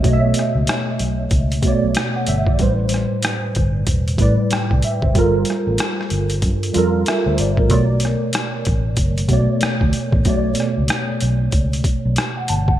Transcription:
Already playing: B2 A3 C#5 D#5 E5
0.03 B1 B2 A3 C#5 D#5, kick, closed hi-hat
0.13 E5
0.34 closed hi-hat
0.39 cross-stick
0.55 C#2
0.67 cross-stick, closed hi-hat
0.99 B1, closed hi-hat
1.31 C#2, kick, closed hi-hat
1.52 closed hi-hat
1.63 B2 A3 C#5, kick, closed hi-hat
1.67 D5
1.84 B1
1.95 cross-stick, closed hi-hat
2.16 F#5
2.27 G1 E5, closed hi-hat
2.47 D5, kick
2.58 A1 A2 G3 B4, kick, closed hi-hat
2.62 C5
2.89 closed hi-hat
2.94 cross-stick
3.23 cross-stick, closed hi-hat
3.55 G1, kick, closed hi-hat
3.87 E1, kick, closed hi-hat
4.08 closed hi-hat
4.18 A1 A2 G3 B4, kick, closed hi-hat
4.22 D5
4.51 G5, muted fingered electric bass stroke, cross-stick, closed hi-hat
4.71 C2, kick
4.82 E5, closed hi-hat
5.02 F#1 C5, kick
5.15 G1 G3 F4 A4, kick, closed hi-hat
5.19 A#4
5.45 closed hi-hat
5.50 cross-stick
5.67 A1
5.78 cross-stick, closed hi-hat
6.01 cross-stick
6.10 G1, closed hi-hat
6.30 closed hi-hat
6.42 G2, kick, closed hi-hat
6.63 closed hi-hat
6.73 F2 G3 F4 A4, closed hi-hat
6.78 A#4
7.06 E5, cross-stick, closed hi-hat
7.26 D2 C5
7.38 G1 D5, closed hi-hat
7.57 A1 A#4, kick
7.69 B1 B2 A3 C#5, kick, closed hi-hat
7.73 D5
8.00 closed hi-hat
8.05 cross-stick
8.33 cross-stick, closed hi-hat
8.65 A1, kick, closed hi-hat
8.97 F#1, kick, closed hi-hat
9.18 closed hi-hat
9.29 B1 B2 A3 C#5, kick, closed hi-hat
9.33 D5
9.61 muted fingered electric bass stroke, cross-stick, closed hi-hat
9.81 D2, kick
9.93 closed hi-hat
10.12 A1, kick
10.25 B1 B2 A3 C#5, kick, closed hi-hat
10.29 D5
10.55 closed hi-hat
10.60 cross-stick
10.78 C#2
10.88 cross-stick, closed hi-hat
11.21 B1, closed hi-hat
11.52 C#2, kick, closed hi-hat
11.73 closed hi-hat
11.84 kick, closed hi-hat
12.06 B1
12.16 cross-stick, closed hi-hat
12.37 F#5
12.48 G1 A5, closed hi-hat
12.68 F#5, kick

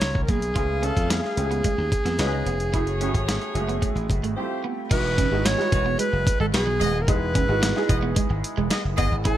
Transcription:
Already playing: F3 G3 B3 C#4 D#4 A#4 C#5 D#5 A#5
0.01 C#2, snare, closed hi-hat
0.15 kick
0.23 A#4
0.28 B1 A#3 G#4, kick, closed hi-hat
0.42 closed hi-hat
0.55 C#2 A3 B3 C#4 F4 G#4 F5, kick, closed hi-hat
0.82 A3 B3 C#4 F4 G#4 A4, closed hi-hat
0.96 F2, muted clean electric guitar stroke, kick, closed hi-hat
1.10 B3 G#4, snare, closed hi-hat
1.24 muted clean electric guitar stroke, snare
1.37 C#2 A3 B3 C#4 F4 G4, closed hi-hat
1.44 G#4
1.51 B3, closed hi-hat
1.64 G#3, kick, closed hi-hat
1.78 D#2, muted clean electric guitar stroke
1.92 kick, closed hi-hat
2.05 F2 B3, snare, closed hi-hat
2.18 C#2 B3 C#4 D#4 F4 F#4 B4 D#5, muted clean electric guitar stroke, snare, closed hi-hat
2.26 G#4
2.33 G#3
2.46 F1 B3, closed hi-hat
2.60 closed hi-hat
2.73 F#1 A3 C#4 E4 F#4 G#4 C#5, kick, closed hi-hat
2.87 closed hi-hat
3.01 A3 C#4 E4 F#4 G4, closed hi-hat
3.08 G#4
3.15 G#1, muted clean electric guitar stroke, kick, closed hi-hat
3.28 B3, snare, closed hi-hat
3.41 muted clean electric guitar stroke, closed hi-hat
3.55 F#1 G#3 C#4 E4 F#4 G#4, closed hi-hat
3.61 A3
3.69 B3, closed hi-hat
3.82 A3, kick, closed hi-hat
3.95 A1, muted clean electric guitar stroke, closed hi-hat
4.10 F#1, kick, closed hi-hat
4.23 G#1 A3, closed hi-hat
4.36 G3 A3 C4 E4 F4 G4 C5
4.43 A3
4.64 B3
4.91 E1 G#3 B3 D#4 E4 F#4 B4, kick, closed hi-hat, crash
5.18 C#4, kick, closed hi-hat
5.31 G#1 G#3 B3 D#4 E4 F#4, muted clean electric guitar stroke
5.45 B3 C#5, snare, closed hi-hat
5.58 G#3 B3 D#4 E4 F#4, muted clean electric guitar stroke, snare
5.72 E1 G#3 F#4 B4, kick, closed hi-hat
5.86 B3
5.99 G#3 B4, closed hi-hat
6.13 F#1, muted clean electric guitar stroke
6.27 kick, closed hi-hat
6.40 G#1 G#3 A4
6.53 B1 G#3 F#4 G#4 B4, muted clean electric guitar stroke, snare, closed hi-hat
6.67 F#3
6.80 D#1 G#3 B3 G#4 D#5, closed hi-hat
7.02 A#4
7.08 E1 G#3 B3 D#4 E4 G#4 B4, kick, closed hi-hat
7.35 C#4, kick, closed hi-hat
7.49 G#1 G#3 B3 D#4 E4 F#4, muted clean electric guitar stroke
7.62 B3, snare, closed hi-hat
7.76 G#3 B3 D#4 E4 G#4, muted clean electric guitar stroke, snare
7.89 E1 B3 G#4 D#5, kick, closed hi-hat
8.03 B3
8.16 G#3, kick, closed hi-hat
8.30 G#1, muted clean electric guitar stroke
8.44 closed hi-hat
8.57 E1 G#3
8.70 B3 G#4 D#5, snare, closed hi-hat
8.85 F#1
8.97 G1 B3 G#4 D#5, kick, closed hi-hat
9.12 G#1
9.25 A1 A3 B3 C#4 E4 A4 G#5, kick, closed hi-hat

